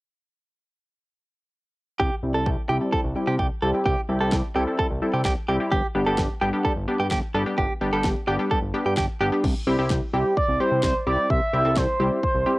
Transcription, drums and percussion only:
2.00 kick
2.46 kick
2.93 kick
3.39 kick
3.86 kick
4.32 kick, snare
4.79 kick
5.25 kick, snare
5.72 kick
6.18 kick, snare
6.65 kick
7.11 kick, snare
7.58 kick
8.04 kick, snare
8.51 kick
8.97 kick, snare
9.44 kick, crash
9.90 kick, snare
10.37 kick
10.83 kick, snare
11.30 kick
11.76 kick, snare
12.23 kick

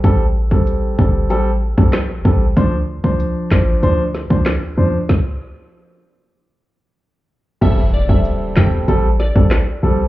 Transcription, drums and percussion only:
0.04 kick, closed hi-hat
0.51 kick
0.67 closed hi-hat
0.99 kick
1.30 closed hi-hat
1.78 kick
1.93 cross-stick, snare, clap, closed hi-hat
2.25 kick
2.57 kick, closed hi-hat
3.04 kick
3.20 closed hi-hat
3.51 kick, snare, clap
3.83 closed hi-hat
4.15 snare
4.30 kick
4.46 cross-stick, snare, clap, closed hi-hat
5.09 kick, snare
7.62 kick, closed hi-hat, crash
8.09 kick
8.25 closed hi-hat
8.57 kick, snare, clap
8.88 closed hi-hat
9.20 snare
9.36 kick
9.51 cross-stick, snare, clap, closed hi-hat

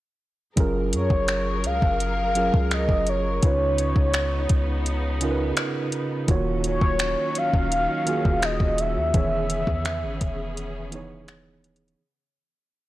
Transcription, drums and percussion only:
0.57 kick, closed hi-hat
0.93 closed hi-hat
1.10 kick
1.28 finger snap, closed hi-hat
1.64 closed hi-hat
1.82 kick
2.00 closed hi-hat
2.35 closed hi-hat
2.54 kick
2.71 finger snap, closed hi-hat
2.89 kick
3.07 closed hi-hat
3.43 kick, closed hi-hat
3.78 closed hi-hat
3.96 kick
4.14 finger snap, closed hi-hat
4.49 kick, closed hi-hat
4.86 closed hi-hat
5.21 closed hi-hat
5.57 finger snap, closed hi-hat
5.92 closed hi-hat
6.28 kick, closed hi-hat
6.64 closed hi-hat
6.81 kick
6.99 finger snap, closed hi-hat
7.35 closed hi-hat
7.54 kick
7.72 closed hi-hat
8.07 closed hi-hat
8.25 kick
8.42 finger snap, closed hi-hat
8.60 kick
8.78 closed hi-hat
9.14 kick, closed hi-hat
9.50 closed hi-hat
9.67 kick
9.85 finger snap, closed hi-hat
10.21 kick, closed hi-hat
10.57 closed hi-hat
10.92 closed hi-hat
11.28 finger snap, closed hi-hat
11.64 closed hi-hat
11.76 closed hi-hat
11.88 closed hi-hat

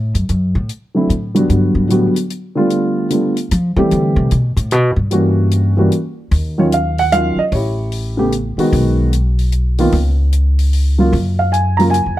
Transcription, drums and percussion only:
0.15 closed hi-hat
0.29 closed hi-hat
0.69 closed hi-hat
1.10 closed hi-hat
1.35 closed hi-hat
1.50 closed hi-hat
1.90 closed hi-hat
2.16 closed hi-hat
2.30 closed hi-hat
2.70 closed hi-hat
3.10 closed hi-hat
3.37 closed hi-hat
3.51 closed hi-hat
3.91 closed hi-hat
4.31 closed hi-hat
4.57 closed hi-hat
4.71 closed hi-hat
5.11 closed hi-hat
5.51 closed hi-hat
5.92 closed hi-hat
6.31 kick, open hi-hat
6.72 closed hi-hat
6.98 open hi-hat
7.12 closed hi-hat
7.52 kick, open hi-hat
7.92 open hi-hat
8.32 closed hi-hat
8.59 open hi-hat
8.73 kick, open hi-hat
9.13 closed hi-hat
9.39 open hi-hat
9.52 closed hi-hat
9.78 open hi-hat
9.92 kick, open hi-hat
10.32 closed hi-hat
10.59 open hi-hat
10.73 open hi-hat
11.13 kick, open hi-hat
11.53 closed hi-hat
11.79 open hi-hat
11.94 closed hi-hat

